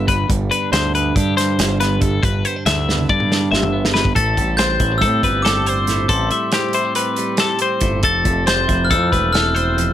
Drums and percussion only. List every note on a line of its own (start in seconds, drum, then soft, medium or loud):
0.08 kick medium
0.08 closed hi-hat medium
0.30 kick loud
0.30 closed hi-hat medium
0.52 closed hi-hat medium
0.73 snare loud
0.73 closed hi-hat medium
0.95 closed hi-hat medium
1.16 kick medium
1.16 closed hi-hat medium
1.38 snare soft
1.38 closed hi-hat medium
1.59 snare medium
1.59 closed hi-hat medium
1.81 snare soft
1.81 closed hi-hat medium
2.02 kick medium
2.02 closed hi-hat medium
2.23 kick loud
2.23 closed hi-hat medium
2.45 closed hi-hat medium
2.66 snare loud
2.66 closed hi-hat medium
2.89 snare medium
2.99 high tom medium
3.09 kick medium
3.20 mid tom medium
3.32 snare medium
3.54 snare medium
3.63 mid tom medium
3.85 snare medium
3.95 snare medium
4.05 kick medium
4.16 kick loud
4.16 closed hi-hat medium
4.37 kick medium
4.37 closed hi-hat medium
4.58 snare loud
4.58 closed hi-hat medium
4.80 kick medium
4.80 closed hi-hat medium
5.02 kick medium
5.02 closed hi-hat medium
5.23 kick medium
5.23 closed hi-hat medium
5.45 snare loud
5.45 closed hi-hat medium
5.66 closed hi-hat medium
5.87 snare soft
5.87 closed hi-hat medium
6.09 kick loud
6.09 closed hi-hat medium
6.31 closed hi-hat medium
6.52 snare loud
6.52 closed hi-hat medium
6.73 closed hi-hat medium
6.95 closed hi-hat medium
7.16 closed hi-hat medium
7.37 snare medium
7.37 closed hi-hat medium
7.59 closed hi-hat medium
7.81 kick medium
7.81 closed hi-hat medium
8.03 kick loud
8.03 closed hi-hat medium
8.25 kick medium
8.25 closed hi-hat medium
8.47 snare loud
8.47 closed hi-hat medium
8.69 kick medium
8.69 closed hi-hat medium
8.91 kick loud
8.91 closed hi-hat medium
9.13 kick medium
9.13 closed hi-hat medium
9.34 snare medium
9.34 closed hi-hat medium
9.56 closed hi-hat medium
9.78 closed hi-hat medium